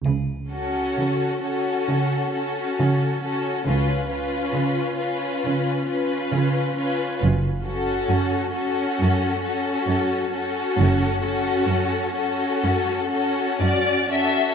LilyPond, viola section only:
\new Staff \with { instrumentName = "Viola section" } { \time 4/4 \key fis \minor \tempo 4 = 66 r8 cis'4 cis'4 cis'4 cis'8 | cis'8 cis'4 cis'4 cis'4 cis'8 | r8 cis'4 cis'4 cis'4 cis'8~ | cis'8 cis'4 cis'4 cis'4 cis'8 | }